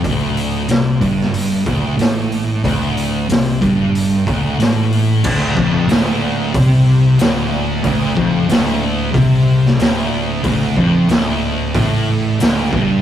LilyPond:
<<
  \new Staff \with { instrumentName = "Distorted electric guitar" } { \clef bass \time 4/4 \key d \minor \tempo 4 = 92 d,4 c8 g,4 d,8 a,4 | d,4 c8 g,4 d,8 a,4 | d,8 f,8 d,4 c4 d,4 | d,8 f,8 d,4 c4 d,4 |
d,8 f,8 d,4 a,4 d,8 g,8 | }
  \new Staff \with { instrumentName = "Distorted electric guitar" } { \clef bass \time 4/4 \key d \minor d,4 c8 g,4 d,8 a,4 | d,4 c8 g,4 d,8 a,4 | d,8 f,8 d,4 c4 d,4 | d,8 f,8 d,4 c4 d,4 |
d,8 f,8 d,4 a,4 d,8 g,8 | }
  \new Staff \with { instrumentName = "Distorted electric guitar" } { \clef bass \time 4/4 \key d \minor r1 | r1 | d,8 f,8 d,4 c4 d,4 | d,8 f,8 d,4 c4 d,4 |
d,8 f,8 d,4 a,4 d,8 g,8 | }
  \new Staff \with { instrumentName = "Fingered electric bass" } { \clef bass \time 4/4 \key d \minor d,,4 c,8 g,,4 d,,8 a,,4 | d,,4 c,8 g,,4 d,,8 a,,4 | d,,8 f,,8 d,,4 c,4 d,,4 | d,,8 f,,8 d,,4 c,4 d,,4 |
d,,8 f,,8 d,,4 a,,4 d,,8 g,,8 | }
  \new DrumStaff \with { instrumentName = "Drums" } \drummode { \time 4/4 <hho bd>8 hho8 <hho sn>8 <hho bd>16 sn16 hho8 <hho bd>8 <hho sn>8 hho8 | <hho bd>8 hho8 <hho sn>8 <hho bd>8 hho8 <hho bd>8 <hho sn>8 hho8 | <cymc bd>8 bd8 <hho sn>4 <hho bd>4 <hho sn>4 | <hho bd>8 bd8 <hho sn>4 <hho bd>8. sn16 <hho sn>4 |
<hho bd>8 bd8 <hho sn>4 <hho bd>4 <hho sn>8 bd8 | }
>>